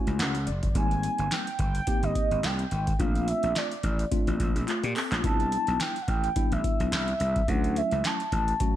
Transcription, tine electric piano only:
0.00 0.35 A3 medium
0.00 0.35 C#4 medium
0.00 0.36 E4 medium
0.00 0.36 F#4 loud
0.00 0.17 G#5 medium
0.19 0.45 F#5 medium
0.47 0.73 D5 medium
0.75 1.48 G3 medium
0.75 1.48 A#3 medium
0.75 1.48 C4 medium
0.75 1.48 D#4 medium
1.87 2.60 A#3 medium
1.87 2.60 C4 medium
1.87 2.60 D#4 medium
1.87 2.60 G4 medium
2.99 3.72 A3 medium
2.99 3.72 C4 medium
2.99 3.72 D4 medium
2.99 3.72 F4 medium
4.11 4.67 A3 medium
4.11 4.68 C4 medium
4.11 4.68 D4 medium
4.11 4.67 F4 medium
4.68 4.83 A3 medium
4.68 4.83 F4 medium
4.84 4.96 A#3 medium
4.84 4.95 G4 medium
4.96 5.11 C4 medium
4.96 5.11 A4 medium
5.11 5.38 A3 soft
5.11 5.38 F4 medium
5.23 5.96 G3 medium
5.23 5.96 B3 medium
5.23 5.96 D4 medium
5.23 5.96 E4 medium
6.36 7.08 G3 medium
6.36 7.08 B3 medium
6.36 7.09 D4 medium
6.36 7.09 E4 medium
7.48 8.20 F#3 medium
7.48 8.20 A3 medium
7.48 8.21 C#4 medium
7.48 8.21 E4 medium
8.60 8.76 F#3 medium
8.60 8.76 A3 medium
8.60 8.76 C#4 medium
8.60 8.76 F#4 medium

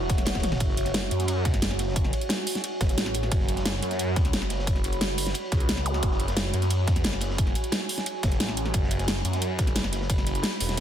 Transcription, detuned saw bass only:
0.00 0.59 E1 medium
0.60 1.10 F#1 medium
1.11 1.61 F#2 loud
1.62 2.12 F#1 loud
2.81 2.96 F#1 loud
2.98 3.30 A1 loud
3.32 3.81 F#1 loud
3.82 4.32 F#2 loud
4.33 4.83 F#1 loud
4.84 5.34 F#1 medium
5.52 6.01 C#2 loud
6.03 6.52 F#1 medium
6.54 7.03 F#2 loud
7.04 7.54 F#1 loud
8.23 8.39 F#1 loud
8.40 8.73 A1 loud
8.74 9.23 F#1 loud
9.25 9.74 F#2 loud
9.76 10.25 F#1 loud
10.27 10.42 F#1 medium
10.60 10.80 E1 loud

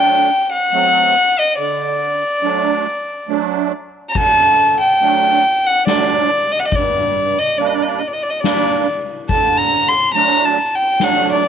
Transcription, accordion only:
0.00 0.29 F#3 medium
0.00 0.30 A3 medium
0.00 0.30 D4 medium
0.72 1.16 F#3 medium
0.72 1.16 A3 medium
0.72 1.16 C4 medium
1.58 2.23 D3 medium
2.43 2.86 F#3 medium
2.43 2.87 A3 medium
2.43 2.87 D4 medium
3.28 3.72 F#3 medium
3.28 3.72 A3 medium
3.28 3.72 D4 medium
4.15 4.80 D3 medium
5.01 5.44 F#3 medium
5.01 5.44 A3 medium
5.01 5.44 D4 medium
5.87 6.30 F#3 medium
5.87 6.30 A3 medium
5.87 6.30 D4 medium
6.74 7.38 G2 medium
7.58 8.01 G3 medium
7.58 8.02 A#3 medium
7.58 8.01 D4 medium
8.42 8.86 G3 medium
8.42 8.86 A#3 medium
8.42 8.87 D4 medium
9.29 9.94 D3 medium
10.14 10.58 F#3 medium
10.14 10.58 A3 medium
10.14 10.58 D4 medium
11.00 11.43 F#3 medium
11.00 11.44 A3 medium
11.00 11.44 D4 medium

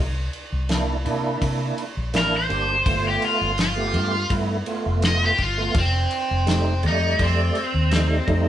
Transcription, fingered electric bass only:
0.00 0.27 C2 loud
0.52 1.08 C2 medium
1.06 1.36 C3 medium
1.42 1.71 C3 loud
1.97 2.11 A#1 medium
2.14 2.46 A1 medium
2.50 2.82 G1 medium
2.86 3.16 G1 loud
3.41 3.95 G1 medium
3.94 4.24 G2 medium
4.30 4.60 G2 loud
4.86 5.30 F1 medium
5.39 5.69 G1 medium
5.75 6.05 F1 loud
6.31 6.85 F1 medium
6.84 7.13 F2 medium
7.19 7.49 F2 loud
7.74 8.18 D#2 medium
8.28 8.48 F2 loud

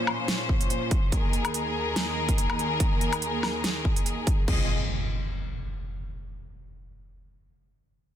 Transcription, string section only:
0.00 1.09 A#2 medium
0.00 1.09 F3 medium
0.00 1.09 C#4 medium
0.00 1.09 C5 medium
1.12 4.45 D#2 medium
1.12 4.45 D#3 medium
1.12 4.45 G#4 medium
1.12 4.45 A#4 medium
4.48 4.68 F3 medium
4.48 4.68 C4 medium
4.48 4.68 G#4 medium
4.48 4.68 D#5 medium

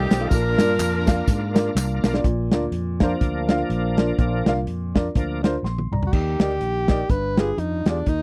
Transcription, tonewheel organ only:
0.00 0.29 D#3 medium
0.00 0.29 G3 medium
0.00 0.29 A3 medium
0.00 0.29 F4 medium
0.00 0.29 D5 medium
0.31 2.21 A#3 medium
0.31 2.21 D4 medium
0.31 2.21 F4 medium
3.02 4.17 F3 medium
3.02 4.18 A#3 soft
3.02 4.18 D4 medium
4.18 4.53 F3 medium
4.18 4.53 A#3 soft
4.18 4.54 D4 medium
5.16 5.41 F3 soft
5.16 5.42 A#3 soft
5.16 5.41 D4 medium

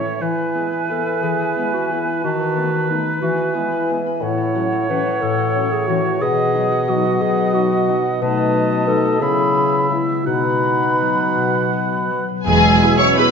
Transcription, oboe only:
0.00 0.23 C#5 soft
0.22 2.24 B4 soft
2.24 3.93 B4 soft
4.22 6.24 C#5 soft
6.23 8.22 D#5 medium
8.22 9.24 D#5 medium
9.22 10.26 E5 soft
10.26 12.25 F#5 soft
12.46 13.31 E5 medium

